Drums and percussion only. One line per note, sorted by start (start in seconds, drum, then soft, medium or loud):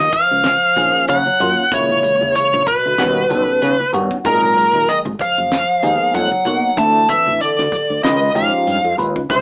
0.13 kick medium
0.13 closed hi-hat medium
0.13 low conga medium
0.44 snare loud
0.44 closed hi-hat medium
0.76 closed hi-hat medium
0.76 high conga medium
1.08 closed hi-hat medium
1.26 high conga medium
1.40 closed hi-hat medium
1.40 low conga medium
1.72 kick loud
1.72 closed hi-hat medium
1.90 high conga medium
2.03 closed hi-hat medium
2.03 low conga medium
2.21 high conga medium
2.35 closed hi-hat medium
2.53 high conga medium
2.67 kick medium
2.67 closed hi-hat medium
2.67 low conga medium
2.98 snare loud
2.98 closed hi-hat medium
3.30 closed hi-hat medium
3.30 high conga medium
3.62 closed hi-hat medium
3.80 high conga medium
3.94 closed hi-hat medium
3.94 low conga medium
4.11 kick medium
4.25 kick loud
4.25 closed hi-hat medium
4.43 high conga medium
4.57 closed hi-hat medium
4.57 low conga medium
4.73 high conga medium
4.88 closed hi-hat medium
5.05 high conga medium
5.19 kick medium
5.19 closed hi-hat medium
5.19 low conga medium
5.52 snare loud
5.52 closed hi-hat medium
5.83 closed hi-hat medium
5.83 high conga medium
6.15 closed hi-hat medium
6.32 high conga medium
6.45 closed hi-hat medium
6.45 low conga medium
6.77 kick medium
6.77 closed hi-hat medium
7.09 closed hi-hat medium
7.09 low conga medium
7.26 high conga medium
7.41 closed hi-hat medium
7.58 snare soft
7.58 high conga medium
7.72 kick medium
7.72 closed hi-hat medium
7.72 low conga medium
8.04 snare loud
8.04 closed hi-hat medium
8.36 closed hi-hat medium
8.36 high conga medium
8.36 low conga medium
8.67 closed hi-hat medium
8.98 closed hi-hat medium
8.98 low conga medium
9.16 kick medium
9.30 kick loud
9.30 closed hi-hat medium